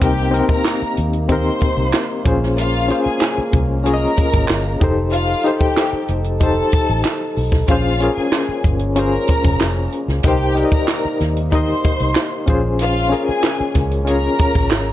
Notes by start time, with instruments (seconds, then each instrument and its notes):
Already playing: french horn section A#3
0.00 fingered electric bass C2, french horn section C3 D#4, reed electric piano C4 D#4 G4 A#4, string section G4 G5, kick, closed hi-hat
0.31 reed electric piano C4 D#4 G4 A#4, closed hi-hat
0.49 string section A#4 A#5, muted fingered electric bass stroke, kick
0.65 snare, clap, closed hi-hat
0.82 muted fingered electric bass stroke
0.97 fingered electric bass D#2, closed hi-hat
1.13 closed hi-hat
1.29 reed electric piano C4 D#4 G4 A#4, string section C5 C6, kick, closed hi-hat
1.60 muted fingered electric bass stroke, kick, closed hi-hat
1.77 fingered electric bass C2
1.93 snare, clap, closed hi-hat
2.25 fingered electric bass A#1, french horn section G#3 C#4, reed electric piano C#4 F4 G#4 C5, kick, closed hi-hat
2.43 snare
2.57 string section F4 F5, closed hi-hat
2.88 reed electric piano C#4 F4 G#4 C5, closed hi-hat
3.05 string section G#4 G#5, muted fingered electric bass stroke
3.21 snare, clap, closed hi-hat
3.38 muted fingered electric bass stroke
3.53 fingered electric bass C2, kick, closed hi-hat
3.84 reed electric piano C#4 F4 G#4 C#5, string section A#4 A#5, closed hi-hat
3.94 reed electric piano D#5
4.17 muted fingered electric bass stroke, kick, closed hi-hat
4.33 fingered electric bass G#1, kick, closed hi-hat
4.48 fingered electric bass G1, snare, clap, closed hi-hat
4.80 fingered electric bass F1, french horn section F3 D#4 A4, reed electric piano D#4 G4 A4 C5, kick, closed hi-hat
5.12 string section F4 F5, closed hi-hat
5.44 reed electric piano D#4 G4 A4 C5, closed hi-hat
5.60 string section G4 G5, muted fingered electric bass stroke, kick
5.77 snare, clap, closed hi-hat
5.93 muted fingered electric bass stroke
6.08 fingered electric bass F1, closed hi-hat
6.24 closed hi-hat
6.40 reed electric piano D#4 G4 A4 C5, string section A4 A5, kick, closed hi-hat
6.72 muted fingered electric bass stroke, kick, closed hi-hat
6.90 fingered electric bass A1
7.04 snare, clap, closed hi-hat
7.37 fingered electric bass B1, open hi-hat
7.52 kick, snare
7.68 fingered electric bass A#1, french horn section G#3 A#3 C#4, reed electric piano C#4 F4 G#4 C5, string section F4 F5, kick, closed hi-hat
8.00 reed electric piano C#4 F4 G#4 A#4, closed hi-hat
8.16 string section G#4 G#5, muted fingered electric bass stroke
8.32 snare, clap, closed hi-hat
8.49 muted fingered electric bass stroke
8.64 fingered electric bass G1, kick, closed hi-hat
8.79 closed hi-hat
8.96 reed electric piano C#4 F4 G#4 C5, string section A#4 A#5, closed hi-hat
9.28 muted fingered electric bass stroke, kick, closed hi-hat
9.44 fingered electric bass F1, kick, closed hi-hat
9.60 fingered electric bass F1, snare, clap, closed hi-hat
9.92 closed hi-hat
10.08 fingered electric bass C#2, snare
10.23 fingered electric bass C2, french horn section C3 D#4, reed electric piano D#4 G4 A#4, string section G4 G5, kick, closed hi-hat
10.28 reed electric piano C5
10.55 reed electric piano D#4 G4 A#4 D5, closed hi-hat
10.65 reed electric piano D#5
10.72 string section A#4 A#5, muted fingered electric bass stroke, kick
10.88 snare, clap, closed hi-hat
11.05 muted fingered electric bass stroke
11.21 fingered electric bass D#2, snare, closed hi-hat
11.36 closed hi-hat
11.52 reed electric piano D#4 G4 A#4 D#5, string section C5 C6, kick, closed hi-hat
11.84 muted fingered electric bass stroke, kick, closed hi-hat
12.00 fingered electric bass C2, closed hi-hat
12.15 snare, clap, closed hi-hat
12.46 fingered electric bass A#1, french horn section G#3 C#4, reed electric piano C#4 F4 G#4 C5, kick, closed hi-hat
12.79 string section F4 F5, closed hi-hat
13.09 reed electric piano C#4 F4 G#4 A#4, closed hi-hat
13.28 string section G#4 G#5, muted fingered electric bass stroke
13.43 snare, clap, closed hi-hat
13.60 muted fingered electric bass stroke
13.75 fingered electric bass C#2, kick, snare, closed hi-hat
13.91 closed hi-hat
14.05 reed electric piano C#4 F4 G#4 C#5, string section A#4 A#5, closed hi-hat
14.39 muted fingered electric bass stroke, kick, closed hi-hat
14.55 fingered electric bass A#1, kick
14.71 fingered electric bass G#1, snare, clap, closed hi-hat